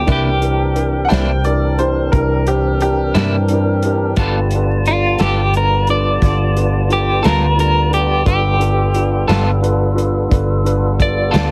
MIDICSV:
0, 0, Header, 1, 8, 480
1, 0, Start_track
1, 0, Tempo, 682594
1, 53, Time_signature, 12, 3, 24, 8
1, 8095, End_track
2, 0, Start_track
2, 0, Title_t, "Upright piano"
2, 0, Program_c, 0, 0
2, 737, Note_on_c, 0, 78, 59
2, 763, Note_on_c, 0, 79, 78
2, 767, Note_off_c, 0, 78, 0
2, 1001, Note_off_c, 0, 79, 0
2, 1018, Note_on_c, 0, 74, 65
2, 1249, Note_off_c, 0, 74, 0
2, 1257, Note_on_c, 0, 72, 69
2, 1489, Note_off_c, 0, 72, 0
2, 1490, Note_on_c, 0, 70, 71
2, 1725, Note_off_c, 0, 70, 0
2, 1742, Note_on_c, 0, 67, 69
2, 1971, Note_off_c, 0, 67, 0
2, 1983, Note_on_c, 0, 67, 83
2, 3272, Note_off_c, 0, 67, 0
2, 8095, End_track
3, 0, Start_track
3, 0, Title_t, "Clean electric guitar"
3, 0, Program_c, 1, 27
3, 82, Note_on_c, 1, 67, 76
3, 1000, Note_off_c, 1, 67, 0
3, 3429, Note_on_c, 1, 65, 81
3, 3656, Note_off_c, 1, 65, 0
3, 3665, Note_on_c, 1, 67, 81
3, 3894, Note_off_c, 1, 67, 0
3, 3917, Note_on_c, 1, 70, 72
3, 4140, Note_off_c, 1, 70, 0
3, 4151, Note_on_c, 1, 74, 76
3, 4843, Note_off_c, 1, 74, 0
3, 4871, Note_on_c, 1, 67, 63
3, 5097, Note_off_c, 1, 67, 0
3, 5100, Note_on_c, 1, 70, 70
3, 5332, Note_off_c, 1, 70, 0
3, 5346, Note_on_c, 1, 70, 72
3, 5575, Note_off_c, 1, 70, 0
3, 5582, Note_on_c, 1, 67, 75
3, 5811, Note_off_c, 1, 67, 0
3, 5819, Note_on_c, 1, 67, 79
3, 6750, Note_off_c, 1, 67, 0
3, 7749, Note_on_c, 1, 74, 70
3, 8095, Note_off_c, 1, 74, 0
3, 8095, End_track
4, 0, Start_track
4, 0, Title_t, "Grand piano"
4, 0, Program_c, 2, 0
4, 39, Note_on_c, 2, 62, 62
4, 42, Note_on_c, 2, 64, 56
4, 46, Note_on_c, 2, 67, 53
4, 52, Note_on_c, 2, 70, 67
4, 226, Note_off_c, 2, 62, 0
4, 228, Note_off_c, 2, 64, 0
4, 230, Note_off_c, 2, 67, 0
4, 233, Note_off_c, 2, 70, 0
4, 284, Note_on_c, 2, 62, 47
4, 285, Note_on_c, 2, 64, 44
4, 294, Note_on_c, 2, 67, 45
4, 294, Note_on_c, 2, 70, 53
4, 469, Note_off_c, 2, 62, 0
4, 469, Note_off_c, 2, 64, 0
4, 474, Note_off_c, 2, 67, 0
4, 474, Note_off_c, 2, 70, 0
4, 521, Note_on_c, 2, 62, 50
4, 530, Note_on_c, 2, 64, 45
4, 532, Note_on_c, 2, 67, 45
4, 538, Note_on_c, 2, 70, 56
4, 708, Note_off_c, 2, 62, 0
4, 712, Note_off_c, 2, 64, 0
4, 713, Note_off_c, 2, 67, 0
4, 716, Note_off_c, 2, 70, 0
4, 770, Note_on_c, 2, 62, 58
4, 771, Note_on_c, 2, 64, 55
4, 774, Note_on_c, 2, 67, 57
4, 782, Note_on_c, 2, 72, 67
4, 952, Note_off_c, 2, 62, 0
4, 953, Note_off_c, 2, 64, 0
4, 954, Note_off_c, 2, 67, 0
4, 958, Note_off_c, 2, 72, 0
4, 1013, Note_on_c, 2, 62, 60
4, 1020, Note_on_c, 2, 64, 55
4, 1024, Note_on_c, 2, 67, 56
4, 1029, Note_on_c, 2, 70, 65
4, 1194, Note_off_c, 2, 62, 0
4, 1197, Note_off_c, 2, 64, 0
4, 1199, Note_off_c, 2, 67, 0
4, 1202, Note_off_c, 2, 70, 0
4, 1253, Note_on_c, 2, 62, 60
4, 1259, Note_on_c, 2, 64, 56
4, 1261, Note_on_c, 2, 67, 55
4, 1267, Note_on_c, 2, 72, 65
4, 1434, Note_off_c, 2, 62, 0
4, 1437, Note_off_c, 2, 64, 0
4, 1438, Note_off_c, 2, 67, 0
4, 1441, Note_off_c, 2, 72, 0
4, 1505, Note_on_c, 2, 62, 61
4, 1511, Note_on_c, 2, 64, 57
4, 1514, Note_on_c, 2, 67, 52
4, 1523, Note_on_c, 2, 70, 68
4, 1680, Note_off_c, 2, 62, 0
4, 1683, Note_off_c, 2, 64, 0
4, 1685, Note_off_c, 2, 67, 0
4, 1689, Note_off_c, 2, 70, 0
4, 1731, Note_on_c, 2, 62, 57
4, 1736, Note_on_c, 2, 67, 55
4, 1737, Note_on_c, 2, 64, 55
4, 1743, Note_on_c, 2, 72, 66
4, 1913, Note_off_c, 2, 62, 0
4, 1916, Note_off_c, 2, 64, 0
4, 1916, Note_off_c, 2, 67, 0
4, 1919, Note_off_c, 2, 72, 0
4, 1978, Note_on_c, 2, 62, 59
4, 1985, Note_on_c, 2, 64, 52
4, 1986, Note_on_c, 2, 67, 53
4, 1991, Note_on_c, 2, 70, 65
4, 2157, Note_off_c, 2, 62, 0
4, 2160, Note_off_c, 2, 64, 0
4, 2160, Note_off_c, 2, 67, 0
4, 2163, Note_off_c, 2, 70, 0
4, 2224, Note_on_c, 2, 64, 49
4, 2225, Note_on_c, 2, 62, 58
4, 2229, Note_on_c, 2, 67, 54
4, 2237, Note_on_c, 2, 70, 64
4, 2400, Note_off_c, 2, 62, 0
4, 2400, Note_off_c, 2, 64, 0
4, 2402, Note_off_c, 2, 67, 0
4, 2406, Note_off_c, 2, 70, 0
4, 2460, Note_on_c, 2, 62, 65
4, 2467, Note_on_c, 2, 64, 58
4, 2473, Note_on_c, 2, 67, 56
4, 2481, Note_on_c, 2, 70, 72
4, 2638, Note_off_c, 2, 62, 0
4, 2641, Note_off_c, 2, 64, 0
4, 2645, Note_off_c, 2, 67, 0
4, 2648, Note_off_c, 2, 70, 0
4, 2701, Note_on_c, 2, 62, 63
4, 2704, Note_on_c, 2, 64, 57
4, 2710, Note_on_c, 2, 67, 55
4, 2710, Note_on_c, 2, 70, 68
4, 2879, Note_off_c, 2, 62, 0
4, 2880, Note_off_c, 2, 64, 0
4, 2883, Note_off_c, 2, 67, 0
4, 2883, Note_off_c, 2, 70, 0
4, 2950, Note_on_c, 2, 62, 73
4, 2953, Note_on_c, 2, 65, 64
4, 2961, Note_on_c, 2, 69, 66
4, 2962, Note_on_c, 2, 71, 77
4, 3123, Note_off_c, 2, 62, 0
4, 3125, Note_off_c, 2, 65, 0
4, 3129, Note_off_c, 2, 69, 0
4, 3129, Note_off_c, 2, 71, 0
4, 3193, Note_on_c, 2, 62, 58
4, 3194, Note_on_c, 2, 65, 55
4, 3197, Note_on_c, 2, 69, 54
4, 3203, Note_on_c, 2, 71, 64
4, 3365, Note_off_c, 2, 62, 0
4, 3365, Note_off_c, 2, 65, 0
4, 3367, Note_off_c, 2, 69, 0
4, 3370, Note_off_c, 2, 71, 0
4, 3424, Note_on_c, 2, 62, 52
4, 3425, Note_on_c, 2, 65, 45
4, 3433, Note_on_c, 2, 69, 47
4, 3435, Note_on_c, 2, 74, 55
4, 3600, Note_off_c, 2, 62, 0
4, 3601, Note_off_c, 2, 65, 0
4, 3605, Note_off_c, 2, 69, 0
4, 3606, Note_off_c, 2, 74, 0
4, 3654, Note_on_c, 2, 62, 51
4, 3659, Note_on_c, 2, 65, 49
4, 3663, Note_on_c, 2, 69, 50
4, 3667, Note_on_c, 2, 71, 60
4, 3835, Note_off_c, 2, 62, 0
4, 3838, Note_off_c, 2, 65, 0
4, 3840, Note_off_c, 2, 69, 0
4, 3842, Note_off_c, 2, 71, 0
4, 3900, Note_on_c, 2, 62, 53
4, 3906, Note_on_c, 2, 65, 45
4, 3908, Note_on_c, 2, 69, 45
4, 3911, Note_on_c, 2, 71, 58
4, 4078, Note_off_c, 2, 62, 0
4, 4082, Note_off_c, 2, 65, 0
4, 4083, Note_off_c, 2, 69, 0
4, 4084, Note_off_c, 2, 71, 0
4, 4135, Note_on_c, 2, 62, 54
4, 4141, Note_on_c, 2, 65, 45
4, 4145, Note_on_c, 2, 69, 48
4, 4146, Note_on_c, 2, 71, 58
4, 4316, Note_off_c, 2, 62, 0
4, 4319, Note_off_c, 2, 65, 0
4, 4321, Note_off_c, 2, 69, 0
4, 4322, Note_off_c, 2, 71, 0
4, 4374, Note_on_c, 2, 62, 51
4, 4378, Note_on_c, 2, 65, 49
4, 4378, Note_on_c, 2, 69, 47
4, 4386, Note_on_c, 2, 74, 56
4, 4556, Note_off_c, 2, 62, 0
4, 4558, Note_off_c, 2, 65, 0
4, 4558, Note_off_c, 2, 69, 0
4, 4561, Note_off_c, 2, 74, 0
4, 4605, Note_on_c, 2, 62, 53
4, 4612, Note_on_c, 2, 65, 46
4, 4614, Note_on_c, 2, 69, 45
4, 4621, Note_on_c, 2, 71, 54
4, 4791, Note_off_c, 2, 62, 0
4, 4795, Note_off_c, 2, 65, 0
4, 4796, Note_off_c, 2, 69, 0
4, 4799, Note_off_c, 2, 71, 0
4, 4844, Note_on_c, 2, 62, 49
4, 4847, Note_on_c, 2, 65, 45
4, 4850, Note_on_c, 2, 69, 46
4, 4856, Note_on_c, 2, 71, 52
4, 5031, Note_off_c, 2, 62, 0
4, 5032, Note_off_c, 2, 65, 0
4, 5034, Note_off_c, 2, 69, 0
4, 5037, Note_off_c, 2, 71, 0
4, 5070, Note_on_c, 2, 62, 44
4, 5073, Note_on_c, 2, 65, 42
4, 5083, Note_on_c, 2, 69, 43
4, 5090, Note_on_c, 2, 71, 52
4, 5264, Note_off_c, 2, 62, 0
4, 5265, Note_off_c, 2, 65, 0
4, 5270, Note_off_c, 2, 69, 0
4, 5274, Note_off_c, 2, 71, 0
4, 5315, Note_on_c, 2, 62, 51
4, 5322, Note_on_c, 2, 69, 45
4, 5324, Note_on_c, 2, 65, 46
4, 5331, Note_on_c, 2, 71, 52
4, 5506, Note_off_c, 2, 62, 0
4, 5510, Note_off_c, 2, 69, 0
4, 5511, Note_off_c, 2, 65, 0
4, 5514, Note_off_c, 2, 71, 0
4, 5548, Note_on_c, 2, 62, 50
4, 5556, Note_on_c, 2, 65, 44
4, 5563, Note_on_c, 2, 69, 46
4, 5565, Note_on_c, 2, 71, 57
4, 5743, Note_off_c, 2, 62, 0
4, 5747, Note_off_c, 2, 65, 0
4, 5750, Note_off_c, 2, 69, 0
4, 5751, Note_off_c, 2, 71, 0
4, 5800, Note_on_c, 2, 62, 61
4, 5805, Note_on_c, 2, 65, 54
4, 5808, Note_on_c, 2, 69, 55
4, 5814, Note_on_c, 2, 71, 64
4, 5989, Note_off_c, 2, 62, 0
4, 5991, Note_off_c, 2, 65, 0
4, 5993, Note_off_c, 2, 69, 0
4, 5996, Note_off_c, 2, 71, 0
4, 6036, Note_on_c, 2, 62, 49
4, 6041, Note_on_c, 2, 65, 44
4, 6043, Note_on_c, 2, 69, 47
4, 6050, Note_on_c, 2, 71, 52
4, 6227, Note_off_c, 2, 62, 0
4, 6229, Note_off_c, 2, 65, 0
4, 6230, Note_off_c, 2, 69, 0
4, 6234, Note_off_c, 2, 71, 0
4, 6287, Note_on_c, 2, 62, 47
4, 6291, Note_on_c, 2, 65, 43
4, 6297, Note_on_c, 2, 71, 51
4, 6298, Note_on_c, 2, 69, 45
4, 6472, Note_off_c, 2, 62, 0
4, 6474, Note_off_c, 2, 65, 0
4, 6477, Note_off_c, 2, 71, 0
4, 6478, Note_off_c, 2, 69, 0
4, 6523, Note_on_c, 2, 62, 59
4, 6526, Note_on_c, 2, 65, 54
4, 6527, Note_on_c, 2, 69, 55
4, 6533, Note_on_c, 2, 71, 66
4, 6710, Note_off_c, 2, 62, 0
4, 6712, Note_off_c, 2, 65, 0
4, 6712, Note_off_c, 2, 69, 0
4, 6715, Note_off_c, 2, 71, 0
4, 6756, Note_on_c, 2, 62, 59
4, 6763, Note_on_c, 2, 65, 54
4, 6764, Note_on_c, 2, 69, 55
4, 6769, Note_on_c, 2, 71, 65
4, 6946, Note_off_c, 2, 62, 0
4, 6950, Note_off_c, 2, 65, 0
4, 6950, Note_off_c, 2, 69, 0
4, 6953, Note_off_c, 2, 71, 0
4, 6988, Note_on_c, 2, 62, 57
4, 6995, Note_on_c, 2, 65, 54
4, 6996, Note_on_c, 2, 69, 57
4, 7002, Note_on_c, 2, 71, 62
4, 7182, Note_off_c, 2, 62, 0
4, 7186, Note_off_c, 2, 65, 0
4, 7186, Note_off_c, 2, 69, 0
4, 7189, Note_off_c, 2, 71, 0
4, 7235, Note_on_c, 2, 62, 58
4, 7240, Note_on_c, 2, 65, 50
4, 7252, Note_on_c, 2, 69, 55
4, 7254, Note_on_c, 2, 71, 64
4, 7425, Note_off_c, 2, 62, 0
4, 7428, Note_off_c, 2, 65, 0
4, 7434, Note_off_c, 2, 69, 0
4, 7435, Note_off_c, 2, 71, 0
4, 7479, Note_on_c, 2, 62, 61
4, 7485, Note_on_c, 2, 65, 50
4, 7497, Note_on_c, 2, 69, 51
4, 7498, Note_on_c, 2, 71, 64
4, 7667, Note_off_c, 2, 62, 0
4, 7670, Note_off_c, 2, 65, 0
4, 7676, Note_off_c, 2, 69, 0
4, 7676, Note_off_c, 2, 71, 0
4, 7723, Note_on_c, 2, 62, 45
4, 7728, Note_on_c, 2, 65, 43
4, 7731, Note_on_c, 2, 69, 42
4, 7740, Note_on_c, 2, 71, 52
4, 7909, Note_off_c, 2, 62, 0
4, 7911, Note_off_c, 2, 65, 0
4, 7913, Note_off_c, 2, 69, 0
4, 7917, Note_off_c, 2, 71, 0
4, 7962, Note_on_c, 2, 65, 41
4, 7964, Note_on_c, 2, 62, 46
4, 7969, Note_on_c, 2, 69, 43
4, 7975, Note_on_c, 2, 71, 52
4, 8095, Note_off_c, 2, 62, 0
4, 8095, Note_off_c, 2, 65, 0
4, 8095, Note_off_c, 2, 69, 0
4, 8095, Note_off_c, 2, 71, 0
4, 8095, End_track
5, 0, Start_track
5, 0, Title_t, "Tonewheel organ"
5, 0, Program_c, 3, 16
5, 67, Note_on_c, 3, 60, 59
5, 70, Note_on_c, 3, 52, 60
5, 75, Note_on_c, 3, 62, 62
5, 81, Note_on_c, 3, 70, 59
5, 2914, Note_off_c, 3, 60, 0
5, 2916, Note_off_c, 3, 52, 0
5, 2918, Note_off_c, 3, 62, 0
5, 2921, Note_off_c, 3, 70, 0
5, 2931, Note_on_c, 3, 81, 60
5, 2934, Note_on_c, 3, 65, 64
5, 2935, Note_on_c, 3, 59, 60
5, 2937, Note_on_c, 3, 55, 65
5, 5787, Note_off_c, 3, 81, 0
5, 5789, Note_off_c, 3, 59, 0
5, 5789, Note_off_c, 3, 65, 0
5, 5790, Note_off_c, 3, 55, 0
5, 5817, Note_on_c, 3, 55, 61
5, 5817, Note_on_c, 3, 69, 60
5, 5823, Note_on_c, 3, 59, 55
5, 5824, Note_on_c, 3, 65, 56
5, 8095, Note_off_c, 3, 55, 0
5, 8095, Note_off_c, 3, 59, 0
5, 8095, Note_off_c, 3, 65, 0
5, 8095, Note_off_c, 3, 69, 0
5, 8095, End_track
6, 0, Start_track
6, 0, Title_t, "Clean electric guitar"
6, 0, Program_c, 4, 27
6, 51, Note_on_c, 4, 48, 61
6, 60, Note_on_c, 4, 62, 76
6, 63, Note_on_c, 4, 58, 61
6, 67, Note_on_c, 4, 64, 71
6, 196, Note_off_c, 4, 48, 0
6, 201, Note_off_c, 4, 62, 0
6, 202, Note_off_c, 4, 58, 0
6, 204, Note_off_c, 4, 64, 0
6, 768, Note_on_c, 4, 64, 66
6, 772, Note_on_c, 4, 62, 69
6, 778, Note_on_c, 4, 58, 58
6, 782, Note_on_c, 4, 48, 57
6, 915, Note_off_c, 4, 64, 0
6, 917, Note_off_c, 4, 62, 0
6, 920, Note_off_c, 4, 58, 0
6, 922, Note_off_c, 4, 48, 0
6, 2211, Note_on_c, 4, 64, 70
6, 2214, Note_on_c, 4, 62, 69
6, 2223, Note_on_c, 4, 58, 63
6, 2226, Note_on_c, 4, 48, 54
6, 2357, Note_off_c, 4, 64, 0
6, 2359, Note_off_c, 4, 62, 0
6, 2363, Note_off_c, 4, 58, 0
6, 2365, Note_off_c, 4, 48, 0
6, 2931, Note_on_c, 4, 55, 69
6, 2936, Note_on_c, 4, 59, 77
6, 2943, Note_on_c, 4, 65, 78
6, 2947, Note_on_c, 4, 69, 82
6, 3078, Note_off_c, 4, 55, 0
6, 3080, Note_off_c, 4, 59, 0
6, 3084, Note_off_c, 4, 65, 0
6, 3085, Note_off_c, 4, 69, 0
6, 3654, Note_on_c, 4, 69, 60
6, 3659, Note_on_c, 4, 65, 61
6, 3664, Note_on_c, 4, 59, 52
6, 3670, Note_on_c, 4, 55, 55
6, 3799, Note_off_c, 4, 69, 0
6, 3802, Note_off_c, 4, 65, 0
6, 3805, Note_off_c, 4, 59, 0
6, 3807, Note_off_c, 4, 55, 0
6, 5082, Note_on_c, 4, 69, 61
6, 5093, Note_on_c, 4, 65, 58
6, 5101, Note_on_c, 4, 55, 51
6, 5101, Note_on_c, 4, 59, 52
6, 5234, Note_off_c, 4, 69, 0
6, 5239, Note_off_c, 4, 65, 0
6, 5243, Note_off_c, 4, 55, 0
6, 5243, Note_off_c, 4, 59, 0
6, 6525, Note_on_c, 4, 69, 68
6, 6533, Note_on_c, 4, 65, 66
6, 6539, Note_on_c, 4, 59, 64
6, 6542, Note_on_c, 4, 55, 57
6, 6675, Note_off_c, 4, 69, 0
6, 6679, Note_off_c, 4, 65, 0
6, 6682, Note_off_c, 4, 59, 0
6, 6684, Note_off_c, 4, 55, 0
6, 7955, Note_on_c, 4, 69, 60
6, 7960, Note_on_c, 4, 65, 54
6, 7968, Note_on_c, 4, 59, 51
6, 7972, Note_on_c, 4, 55, 51
6, 8095, Note_off_c, 4, 55, 0
6, 8095, Note_off_c, 4, 59, 0
6, 8095, Note_off_c, 4, 65, 0
6, 8095, Note_off_c, 4, 69, 0
6, 8095, End_track
7, 0, Start_track
7, 0, Title_t, "Fingered electric bass"
7, 0, Program_c, 5, 33
7, 59, Note_on_c, 5, 36, 82
7, 748, Note_off_c, 5, 36, 0
7, 783, Note_on_c, 5, 36, 81
7, 1471, Note_off_c, 5, 36, 0
7, 1498, Note_on_c, 5, 36, 90
7, 2189, Note_off_c, 5, 36, 0
7, 2215, Note_on_c, 5, 43, 90
7, 2907, Note_off_c, 5, 43, 0
7, 2933, Note_on_c, 5, 31, 86
7, 3627, Note_off_c, 5, 31, 0
7, 3657, Note_on_c, 5, 31, 82
7, 4349, Note_off_c, 5, 31, 0
7, 4373, Note_on_c, 5, 31, 93
7, 5067, Note_off_c, 5, 31, 0
7, 5099, Note_on_c, 5, 38, 90
7, 5790, Note_off_c, 5, 38, 0
7, 5812, Note_on_c, 5, 31, 87
7, 6506, Note_off_c, 5, 31, 0
7, 6531, Note_on_c, 5, 31, 74
7, 7225, Note_off_c, 5, 31, 0
7, 7255, Note_on_c, 5, 31, 82
7, 7946, Note_off_c, 5, 31, 0
7, 7973, Note_on_c, 5, 38, 90
7, 8095, Note_off_c, 5, 38, 0
7, 8095, End_track
8, 0, Start_track
8, 0, Title_t, "Drums"
8, 53, Note_on_c, 9, 42, 70
8, 56, Note_on_c, 9, 36, 92
8, 123, Note_off_c, 9, 42, 0
8, 126, Note_off_c, 9, 36, 0
8, 295, Note_on_c, 9, 42, 54
8, 365, Note_off_c, 9, 42, 0
8, 534, Note_on_c, 9, 42, 52
8, 604, Note_off_c, 9, 42, 0
8, 772, Note_on_c, 9, 42, 63
8, 788, Note_on_c, 9, 38, 92
8, 843, Note_off_c, 9, 42, 0
8, 858, Note_off_c, 9, 38, 0
8, 1015, Note_on_c, 9, 42, 49
8, 1085, Note_off_c, 9, 42, 0
8, 1256, Note_on_c, 9, 42, 47
8, 1326, Note_off_c, 9, 42, 0
8, 1496, Note_on_c, 9, 42, 72
8, 1497, Note_on_c, 9, 36, 100
8, 1567, Note_off_c, 9, 42, 0
8, 1568, Note_off_c, 9, 36, 0
8, 1734, Note_on_c, 9, 42, 57
8, 1805, Note_off_c, 9, 42, 0
8, 1973, Note_on_c, 9, 42, 58
8, 2043, Note_off_c, 9, 42, 0
8, 2213, Note_on_c, 9, 42, 76
8, 2228, Note_on_c, 9, 38, 95
8, 2283, Note_off_c, 9, 42, 0
8, 2299, Note_off_c, 9, 38, 0
8, 2450, Note_on_c, 9, 42, 59
8, 2521, Note_off_c, 9, 42, 0
8, 2690, Note_on_c, 9, 42, 59
8, 2761, Note_off_c, 9, 42, 0
8, 2928, Note_on_c, 9, 42, 76
8, 2934, Note_on_c, 9, 36, 101
8, 2998, Note_off_c, 9, 42, 0
8, 3004, Note_off_c, 9, 36, 0
8, 3169, Note_on_c, 9, 42, 61
8, 3239, Note_off_c, 9, 42, 0
8, 3415, Note_on_c, 9, 42, 57
8, 3485, Note_off_c, 9, 42, 0
8, 3646, Note_on_c, 9, 42, 67
8, 3662, Note_on_c, 9, 38, 91
8, 3717, Note_off_c, 9, 42, 0
8, 3732, Note_off_c, 9, 38, 0
8, 3893, Note_on_c, 9, 42, 51
8, 3964, Note_off_c, 9, 42, 0
8, 4129, Note_on_c, 9, 42, 49
8, 4200, Note_off_c, 9, 42, 0
8, 4373, Note_on_c, 9, 42, 65
8, 4374, Note_on_c, 9, 36, 94
8, 4388, Note_on_c, 9, 38, 27
8, 4443, Note_off_c, 9, 42, 0
8, 4445, Note_off_c, 9, 36, 0
8, 4459, Note_off_c, 9, 38, 0
8, 4617, Note_on_c, 9, 42, 51
8, 4688, Note_off_c, 9, 42, 0
8, 4855, Note_on_c, 9, 42, 51
8, 4925, Note_off_c, 9, 42, 0
8, 5093, Note_on_c, 9, 42, 70
8, 5108, Note_on_c, 9, 38, 98
8, 5163, Note_off_c, 9, 42, 0
8, 5178, Note_off_c, 9, 38, 0
8, 5338, Note_on_c, 9, 42, 55
8, 5408, Note_off_c, 9, 42, 0
8, 5577, Note_on_c, 9, 42, 55
8, 5648, Note_off_c, 9, 42, 0
8, 5810, Note_on_c, 9, 42, 73
8, 5811, Note_on_c, 9, 36, 99
8, 5880, Note_off_c, 9, 42, 0
8, 5881, Note_off_c, 9, 36, 0
8, 6054, Note_on_c, 9, 42, 58
8, 6124, Note_off_c, 9, 42, 0
8, 6290, Note_on_c, 9, 42, 52
8, 6360, Note_off_c, 9, 42, 0
8, 6534, Note_on_c, 9, 42, 68
8, 6549, Note_on_c, 9, 38, 91
8, 6604, Note_off_c, 9, 42, 0
8, 6620, Note_off_c, 9, 38, 0
8, 6777, Note_on_c, 9, 42, 54
8, 6848, Note_off_c, 9, 42, 0
8, 7019, Note_on_c, 9, 42, 54
8, 7089, Note_off_c, 9, 42, 0
8, 7253, Note_on_c, 9, 36, 99
8, 7253, Note_on_c, 9, 42, 76
8, 7323, Note_off_c, 9, 42, 0
8, 7324, Note_off_c, 9, 36, 0
8, 7498, Note_on_c, 9, 42, 55
8, 7569, Note_off_c, 9, 42, 0
8, 7733, Note_on_c, 9, 36, 67
8, 7735, Note_on_c, 9, 42, 55
8, 7803, Note_off_c, 9, 36, 0
8, 7805, Note_off_c, 9, 42, 0
8, 7973, Note_on_c, 9, 42, 69
8, 7988, Note_on_c, 9, 38, 94
8, 8043, Note_off_c, 9, 42, 0
8, 8058, Note_off_c, 9, 38, 0
8, 8095, End_track
0, 0, End_of_file